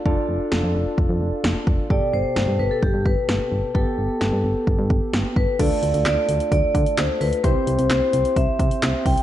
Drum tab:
CC |----------------|----------------|----------------|x---------------|
HH |----------------|----------------|----------------|x-xxx-xxx-xxx-ox|
CP |----------------|----------------|----------------|----x-------x---|
SD |----o-------o---|----o-------o---|----o-------o---|----o-------o---|
BD |o-------o-----o-|o-------o-o-----|o-------o-o---o-|o-------o-o-----|

CC |----------------|
HH |x-xxx-xxx-xxx-ox|
CP |----x-------x---|
SD |----o-------o---|
BD |o-------o-o---o-|